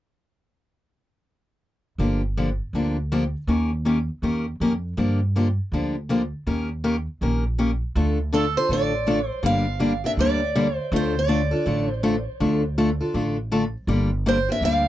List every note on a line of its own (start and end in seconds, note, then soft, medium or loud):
1.98 2.59 G1 medium
1.98 2.21 D3 soft
1.98 2.21 F3 medium
1.98 2.21 A#3 medium
1.98 2.21 D4 medium
1.98 2.21 G4 medium
2.37 2.49 D3 medium
2.37 2.48 F3 medium
2.37 2.49 A#3 medium
2.37 2.49 D4 medium
2.37 2.49 G4 medium
2.73 3.33 D2 medium
2.73 2.96 D3 medium
2.73 2.96 F3 medium
2.73 2.96 A#3 medium
2.73 2.96 D4 medium
2.73 2.96 G4 medium
3.12 3.23 D3 medium
3.12 3.23 F3 medium
3.12 3.23 A#3 medium
3.12 3.23 D4 medium
3.12 3.24 G4 medium
3.47 4.08 D#2 medium
3.47 3.70 D#3 medium
3.47 3.70 A#3 medium
3.47 3.70 C#4 medium
3.47 3.70 G4 medium
3.47 3.70 A#4 medium
3.85 3.97 D#3 medium
3.85 3.97 A#3 medium
3.85 3.97 C#4 medium
3.85 3.97 G4 medium
3.85 3.98 A#4 medium
4.22 4.54 D#2 medium
4.22 4.45 D#3 medium
4.22 4.45 A#3 medium
4.22 4.45 C#4 medium
4.22 4.45 G4 medium
4.22 4.45 A#4 medium
4.60 4.92 F2 medium
4.60 4.72 D#3 medium
4.60 4.72 A#3 medium
4.60 4.72 C#4 medium
4.60 4.72 G4 medium
4.60 4.73 A#4 medium
4.97 5.57 G2 medium
4.97 5.19 D3 medium
4.97 5.19 F3 medium
4.97 5.19 A#3 medium
4.97 5.19 D4 medium
4.97 5.19 G4 medium
5.36 5.47 D3 medium
5.36 5.47 F3 medium
5.36 5.47 A#3 medium
5.36 5.47 D4 medium
5.36 5.47 G4 medium
5.72 6.31 D2 medium
5.72 5.94 D3 medium
5.72 5.94 F3 medium
5.72 5.94 A#3 medium
5.72 5.95 D4 medium
5.72 5.95 G4 medium
6.09 6.21 D3 medium
6.09 6.21 F3 medium
6.09 6.21 A#3 medium
6.09 6.21 D4 medium
6.09 6.22 G4 medium
6.47 7.06 D#2 medium
6.47 6.68 D#3 medium
6.47 6.68 A#3 medium
6.47 6.69 C#4 medium
6.47 6.69 G4 medium
6.47 6.69 A#4 medium
6.84 6.95 D#3 medium
6.84 6.95 A#3 medium
6.84 6.95 C#4 medium
6.84 6.95 G4 medium
6.84 6.96 A#4 medium
7.21 7.81 A#1 medium
7.21 7.43 D#3 medium
7.21 7.43 A#3 medium
7.21 7.43 C#4 medium
7.21 7.44 G4 medium
7.21 7.43 A#4 medium
7.58 7.70 D#3 medium
7.58 7.70 A#3 medium
7.58 7.70 C#4 medium
7.58 7.70 G4 medium
7.58 7.70 A#4 medium
7.95 8.55 D2 medium
7.95 8.17 D3 medium
7.95 8.17 A3 medium
7.95 8.17 D4 medium
7.95 8.17 F4 medium
7.95 8.18 A4 medium
8.33 8.44 D3 medium
8.33 8.44 A3 medium
8.33 8.44 D4 medium
8.33 8.45 F4 medium
8.33 8.44 A4 loud
8.33 8.58 A4 medium
8.57 8.70 D4 soft
8.57 8.70 F4 soft
8.57 8.70 A4 medium
8.57 8.69 C5 medium
8.69 9.29 A1 medium
8.69 8.92 D3 medium
8.69 8.92 A3 medium
8.69 8.92 D4 medium
8.69 8.92 F4 medium
8.69 8.92 A4 medium
8.69 9.28 D5 medium
9.07 9.18 D3 medium
9.07 9.18 A3 medium
9.07 9.19 D4 medium
9.07 9.19 F4 medium
9.07 9.19 A4 medium
9.28 9.46 C5 medium
9.43 10.03 G1 medium
9.43 9.65 D3 medium
9.43 9.65 G3 medium
9.43 9.65 A#3 medium
9.43 9.65 D4 medium
9.43 9.65 G4 medium
9.43 10.01 F5 loud
9.80 9.92 D3 medium
9.80 9.92 G3 medium
9.80 9.92 A#3 medium
9.80 9.92 D4 medium
9.80 9.92 G4 medium
10.04 10.18 A#3 soft
10.04 10.18 D4 soft
10.04 10.17 G4 medium
10.04 10.11 E5 medium
10.17 10.77 D2 medium
10.17 10.40 D3 medium
10.17 10.40 G3 medium
10.17 10.40 A#3 medium
10.17 10.40 D4 medium
10.17 10.40 G4 medium
10.17 10.76 D5 loud
10.55 10.67 D3 medium
10.55 10.67 G3 medium
10.55 10.67 A#3 medium
10.55 10.67 D4 medium
10.55 10.67 G4 medium
10.76 10.96 C5 loud
10.92 11.51 D2 medium
10.92 11.14 D3 medium
10.92 11.14 A3 medium
10.92 11.14 D4 medium
10.92 11.14 F4 medium
10.92 11.14 A4 medium
10.96 11.18 C5 medium
11.19 11.92 D5 medium
11.28 11.40 D3 medium
11.28 11.40 A3 medium
11.28 11.41 D4 medium
11.28 11.41 F4 medium
11.28 11.41 A4 medium
11.51 11.65 D4 soft
11.51 11.66 F4 medium
11.51 11.65 A4 medium
11.66 12.25 A1 medium
11.66 11.87 D3 medium
11.66 11.88 A3 medium
11.66 11.88 D4 medium
11.66 11.88 F4 medium
11.66 11.88 A4 medium
11.92 12.24 C5 medium
12.03 12.15 D3 medium
12.03 12.15 A3 medium
12.03 12.15 D4 medium
12.03 12.15 F4 medium
12.03 12.15 A4 medium
12.40 13.00 D2 medium
12.40 12.62 D3 medium
12.40 12.62 A3 medium
12.40 12.62 D4 medium
12.40 12.62 F4 medium
12.40 12.62 A4 medium
12.78 12.89 D3 medium
12.78 12.89 A3 medium
12.78 12.89 D4 medium
12.78 12.89 F4 medium
12.78 12.89 A4 medium
13.01 13.13 D4 soft
13.01 13.14 F4 soft
13.01 13.14 A4 medium
13.14 13.74 A1 medium
13.14 13.36 D3 medium
13.14 13.36 A3 medium
13.14 13.36 D4 medium
13.14 13.36 F4 medium
13.14 13.36 A4 medium
13.52 13.63 D3 medium
13.52 13.63 A3 medium
13.52 13.63 D4 medium
13.52 13.63 F4 medium
13.52 13.63 A4 loud
13.87 14.47 G1 medium
13.87 14.10 D3 medium
13.87 14.10 G3 medium
13.87 14.10 A#3 medium
13.87 14.10 D4 medium
13.87 14.10 G4 medium
14.26 14.37 D3 medium
14.26 14.37 G3 medium
14.26 14.37 A#3 medium
14.26 14.37 D4 medium
14.26 14.38 G4 medium
14.26 14.49 C5 medium
14.49 14.62 A#3 soft
14.49 14.61 D4 medium
14.49 14.62 G4 medium
14.49 14.64 E5 medium
14.61 14.88 D2 medium
14.61 14.84 D3 medium
14.61 14.84 G3 medium
14.61 14.84 A#3 medium
14.61 14.84 D4 medium
14.61 14.84 G4 medium
14.65 14.88 F5 medium